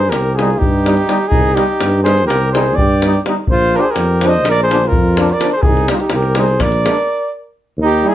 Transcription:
Already playing: G2 G#4 C5
0.10 G4 A#4, davul high
0.15 C2
0.35 F4 G#4, davul high
0.40 G3 D#4
0.58 D#4 G4, davul low
0.63 G2
0.86 G3 D#4, davul high
0.97 davul high
1.08 G3 D#4, davul high
1.28 D#4 G#4, davul low
1.33 C2
1.45 davul high
1.54 G3 D#4 G4, davul high
1.81 G2, davul high
2.03 G3 D#4 G#4 C5, davul high
2.18 davul high
2.26 C2 G4 A#4, davul high
2.52 G3 D#4 G#4 C5, davul high
2.75 G2 G4 D5, davul low
3.02 G3 D#4, davul high
3.13 davul high
3.26 G3 D#4, davul high
3.47 A#1 C5, davul low
3.52 F4
3.61 davul high
3.74 F3 D4 A#4
3.80 G4 G#4 C5
3.91 G4 A#4
3.96 F2, davul high
4.21 F3 D4, davul high
4.27 C5 D#5
4.34 davul high
4.45 A#1, davul high
4.49 A#4 D5
4.63 G#4 C5
4.69 F3 D4, davul high
4.85 F4 A#4
4.92 F2, davul low
5.17 F3 D4, davul high
5.30 A#4 D5, davul high
5.39 F3 D4, davul high
5.53 G#4 C5
5.62 C2 D#4 G#4, davul low
5.77 davul high
5.88 G3 D#4 G4, davul high
5.95 D4 F4
6.00 D#4 G4, davul high
6.10 C2 A#4, davul high
6.14 G4
6.23 davul high
6.35 G3 D#4 C5, davul high
6.40 G#4
6.48 davul high
6.60 A#1 A#4 D5, davul high, davul low
6.72 davul high
6.84 G#3, davul high
6.88 D4
6.97 davul high
7.78 D#2
7.83 D#4 G4
8.03 G3 D#4
8.07 E4 G#4

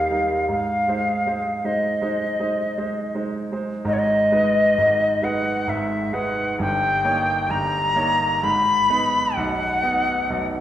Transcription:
Already playing: D#2 G3 D#4 A#4 F5
0.11 G3 D#4 A#4
0.48 G#2 F5
0.88 G#3 D#4 C5
1.27 G#3 D#4 C5
1.64 G#3 D#4 C5 D#5
2.02 G#3 D#4 C5
2.40 G#3 D#4 C5
2.78 G#3 D#4 C5
3.15 G#3 D#4 C5
3.52 G#3 D#4 C5
3.85 G#1 G#2 D#5
3.93 C#5
3.98 D#5
4.32 G#3 D#4 B4
4.78 G#1 G#2
5.22 G#3 D#4 B4 F#5
5.67 G#1 G#2 E5
6.13 G#3 D#4 B4 F#5
6.59 G1 G2 G5
7.04 A#3 D#4 C#5
7.49 G1 G2 A#5
7.96 A#3 D#4 C#5
8.43 G#1 G#2 B5
8.90 B3 D#4 B4
9.35 B0 B1 F#5
9.83 B3 D#4 B4
10.30 B0 B1

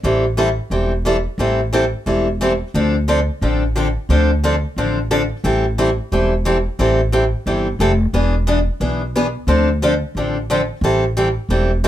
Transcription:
0.03 A1 E3 G3 C4 E4 A4
0.37 E3 G3 C4 E4 A4
0.70 E1 E3 G3 C4 E4 A4
1.05 E3 G3 C4 E4 A4
1.38 A1 E3 G3 C4 E4 A4
1.73 E3 G3 C4 E4 A4
2.06 E1 E3 G3 C4 E4 A4
2.41 E3 G3 C4 E4 A4
2.74 D2 D3 F3 C4 D4 A4
3.08 D3 F3 C4 D4 A4
3.41 A1 D3 F3 C4 D4 A4
3.76 D3 F3 C4 D4 A4
4.09 D2 D3 F3 C4 D4 A4
4.44 D3 F3 C4 D4 A4
4.76 A1 D3 F3 C4 D4 A4
5.11 D3 F3 C4 D4 A4
5.44 A1 E3 G3 C4 E4 A4
5.78 E3 G3 C4 E4 A4
6.12 E1 E3 G3 C4 E4 A4
6.45 E3 G3 C4 E4 A4
6.79 A1 E3 G3 C4 E4 A4
7.12 E3 G3 C4 E4 A4
7.46 G1 E3 G3 C4 E4 A4
7.79 F1 E3 G3 C4 E4 A4
8.13 E1 E3 B3 D4 G#4
8.47 E3 B3 D4 G#4
8.80 B1 E3 B3 D4 G#4
9.16 E3 B3 D4 G#4
9.47 D2 D3 F3 C4 D4 A4
9.82 D3 F3 C4 D4 A4
10.15 A1 D3 F3 C4 D4 A4
10.50 D3 F3 C4 D4 A4
10.81 A1 E3 G3 C4 E4 A4
11.17 E3 G3 C4 E4 A4
11.49 E1 E3 G3 C4 E4 A4
11.84 E3 G3 C4 E4 A4

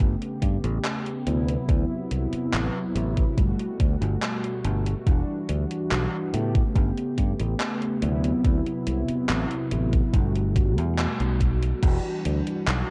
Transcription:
Already playing: C#3 A3 B3 G4
0.00 G1, kick, closed hi-hat
0.22 closed hi-hat
0.42 G2, kick, closed hi-hat
0.64 A1, closed hi-hat
0.84 clap, closed hi-hat
1.06 closed hi-hat
1.25 D2 C3 F#3 B3 E4, closed hi-hat
1.48 closed hi-hat
1.69 D2, kick, closed hi-hat
2.11 C2, closed hi-hat
2.33 muted fingered electric bass stroke, closed hi-hat
2.53 A1, clap, closed hi-hat
2.95 A1, closed hi-hat
3.17 kick, closed hi-hat
3.36 G1 B2 G3 A3 F#4, kick, closed hi-hat
3.59 closed hi-hat
3.80 D2, kick, closed hi-hat
4.01 G1, closed hi-hat
4.22 clap, closed hi-hat
4.44 closed hi-hat
4.65 G1, closed hi-hat
4.86 closed hi-hat
5.05 E1 E3 G3 D4 F#4, kick, closed hi-hat
5.49 D2, closed hi-hat
5.71 closed hi-hat
5.91 B1, clap, closed hi-hat
6.32 A2 C#3 A3 B3 G4, closed hi-hat
6.55 kick, closed hi-hat
6.76 G1, kick, closed hi-hat
6.97 closed hi-hat
7.18 G2, kick, closed hi-hat
7.40 A1, closed hi-hat
7.60 clap, closed hi-hat
7.82 closed hi-hat
8.01 D2 C3 F#3 B3 E4, closed hi-hat
8.24 closed hi-hat
8.45 D2, kick, closed hi-hat
8.66 closed hi-hat
8.87 C2, closed hi-hat
9.09 muted fingered electric bass stroke, closed hi-hat
9.29 A1, clap, closed hi-hat
9.51 closed hi-hat
9.71 A1, closed hi-hat
9.93 kick, closed hi-hat
10.13 G1 B2 G3 A3 F#4, kick, closed hi-hat
10.36 closed hi-hat
10.56 kick, closed hi-hat
10.78 E2, closed hi-hat
10.98 clap, closed hi-hat
11.20 B1, closed hi-hat
11.40 kick, closed hi-hat
11.63 closed hi-hat
11.81 E1 E3 G3 D4 F#4, kick, closed hi-hat, crash
12.25 D2, closed hi-hat
12.47 closed hi-hat
12.67 B1, clap, closed hi-hat

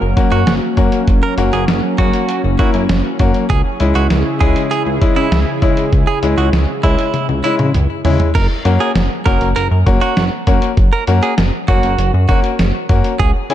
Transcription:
Already playing: F#3 A#3 C#4
0.01 F#1
0.17 A#3 C#4 F#4, kick, closed hi-hat
0.32 F#2 F#4, closed hi-hat
0.47 F#1, snare, closed hi-hat
0.77 F#2 A#3 C#4 F#4, kick, closed hi-hat
0.92 closed hi-hat
1.08 F#1, kick, closed hi-hat
1.23 A#4
1.38 F#1 A#3 C#4 F#4, closed hi-hat
1.53 F#1 G#4, closed hi-hat
1.68 F#1, snare, closed hi-hat
1.98 F#1 A#3 C#4 F#4, kick, closed hi-hat
2.13 closed hi-hat
2.29 closed hi-hat
2.44 F#1
2.59 A#3 C#4 E4 F#4, kick, closed hi-hat
2.74 F#2, closed hi-hat
2.89 F#1, snare, closed hi-hat
3.19 F#2 A#3 C#4 F#4, kick, closed hi-hat
3.34 closed hi-hat
3.50 C#2 C#3 E4 G#4, kick, closed hi-hat
3.80 C#2 G#3 C#4 E4, closed hi-hat
3.95 C#2 F#4, closed hi-hat
4.10 C#2, snare, closed hi-hat
4.41 C#2 G#3 C#4 E4 G#4, kick, closed hi-hat
4.56 closed hi-hat
4.71 G#4, closed hi-hat
4.86 C#2
5.01 G#3 C#4 E4, kick, closed hi-hat
5.16 C#3 E4, closed hi-hat
5.32 C#2, snare, closed hi-hat
5.62 C#3 G#3 C#4 E4, kick, closed hi-hat
5.77 closed hi-hat
5.93 C#2, kick, closed hi-hat
6.07 G#4
6.23 C#2 G#3 C#4 E4, closed hi-hat
6.38 C#2 F#4, closed hi-hat
6.53 C#2, snare, closed hi-hat
6.83 C#2 G#3 C#4 E4, kick, closed hi-hat
6.99 closed hi-hat
7.14 closed hi-hat, high tom
7.29 C#2, high tom
7.44 G#3 C#4 E4, closed hi-hat
7.59 C#3, closed hi-hat, mid tom
7.74 C#2, closed hi-hat, mid tom
8.05 C#3 G#3 C#4 E4, floor tom, open hi-hat
8.20 closed hi-hat, floor tom
8.35 F#1 A#4, kick, closed hi-hat, crash
8.65 F#2 A#3 C#4 F#4, closed hi-hat
8.80 G#4, closed hi-hat
8.95 F#1, snare, closed hi-hat
9.26 F#1 A#3 C#4 F#4 A#4, kick, closed hi-hat
9.41 F#1, closed hi-hat
9.56 F#1 A#4, closed hi-hat
9.71 F#2
9.86 F#1 A#3 C#4 F#4, kick, closed hi-hat
10.01 F#4, closed hi-hat
10.17 F#1, snare, closed hi-hat
10.47 F#2 A#3 C#4 F#4, kick, closed hi-hat
10.62 closed hi-hat
10.77 F#1, kick, closed hi-hat
10.93 A#4
11.07 F#2 A#3 C#4 F#4, closed hi-hat
11.23 G#4, closed hi-hat
11.38 F#1, snare, closed hi-hat
11.68 F#1 A#3 C#4 F#4, kick, closed hi-hat
11.83 F#1, closed hi-hat
11.98 F#1, closed hi-hat
12.14 F#2
12.29 F#1 A#3 C#4 F#4, kick, closed hi-hat
12.44 closed hi-hat
12.59 F#1, snare, closed hi-hat
12.89 F#2 A#3 C#4 F#4, kick, closed hi-hat
13.04 closed hi-hat
13.20 C#2 G#4, kick, closed hi-hat
13.50 C#3 C#4 E4 G#4, closed hi-hat

